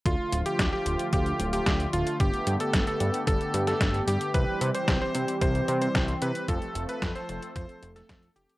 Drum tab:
HH |x-xxx-xxxxxxxxxx|xxxxxxxxxxxxxxxx|x-xxx-xxxxxxxxxx|xxxxxxxxxxxxxxxx|
SD |----o-------o---|----o------oo---|----o-------o---|----o------oo---|
BD |o---o---o---o---|o---o---o---o---|o---o---o---o---|o---o---o---o---|